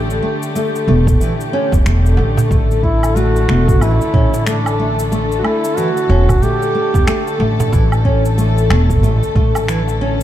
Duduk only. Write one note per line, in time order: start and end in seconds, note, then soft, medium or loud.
2.84 3.18 E4 loud
3.17 3.84 F#4 loud
3.82 4.47 E4 loud
4.47 4.95 D4 medium
5.39 5.46 F#4 medium
5.44 5.79 E4 medium
5.77 6.44 F#4 medium
6.43 7.40 G4 loud